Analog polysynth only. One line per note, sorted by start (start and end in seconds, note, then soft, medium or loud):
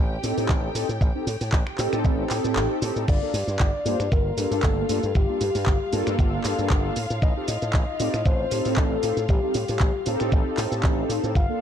0.22 0.72 C4 medium
0.22 0.72 D#4 medium
0.22 0.72 G4 medium
0.22 0.72 A4 medium
0.74 0.87 C4 medium
0.74 0.87 D#4 medium
0.74 0.87 G4 medium
0.74 0.87 A4 medium
1.14 1.25 C4 medium
1.14 1.25 D#4 medium
1.14 1.25 G4 medium
1.14 1.26 A4 medium
1.78 3.06 C4 medium
1.78 3.06 D#4 medium
1.78 3.07 G4 medium
1.78 3.07 A4 loud
3.22 3.32 A#3 loud
3.22 3.32 D4 medium
3.22 3.32 F4 medium
3.22 3.33 A4 loud
3.85 3.98 A#3 medium
3.85 3.98 D4 medium
3.85 3.98 F4 medium
3.85 3.98 C5 loud
4.37 4.86 A#3 medium
4.37 4.86 D4 medium
4.37 4.86 F4 medium
4.37 4.86 A4 medium
4.89 5.01 A#3 medium
4.89 5.01 D4 medium
4.89 5.01 F4 medium
4.89 5.02 A4 medium
5.28 5.39 A#3 medium
5.28 5.39 D4 medium
5.28 5.39 F4 medium
5.28 5.39 A4 medium
5.91 6.94 A#3 medium
5.91 6.94 D4 medium
5.91 6.95 F4 medium
5.91 6.95 A4 loud
7.36 7.46 C4 medium
7.36 7.46 D#4 medium
7.36 7.46 G4 medium
7.36 7.46 A4 loud
7.99 8.12 C4 medium
7.99 8.12 D#4 medium
7.99 8.12 G4 medium
7.99 8.12 D5 loud
8.51 9.00 C4 medium
8.51 9.00 D#4 medium
8.51 9.00 G4 medium
8.51 9.00 A4 medium
9.03 9.15 C4 medium
9.03 9.15 D#4 medium
9.03 9.15 G4 medium
9.03 9.15 A4 medium
9.43 9.53 C4 medium
9.43 9.53 D#4 medium
9.43 9.53 G4 medium
9.43 9.53 A4 medium
10.05 11.34 C4 medium
10.05 11.34 D#4 medium
10.05 11.34 G4 medium
10.05 11.35 A4 loud
11.49 11.59 A#3 loud
11.49 11.59 D4 medium
11.49 11.60 F4 medium
11.49 11.60 A4 loud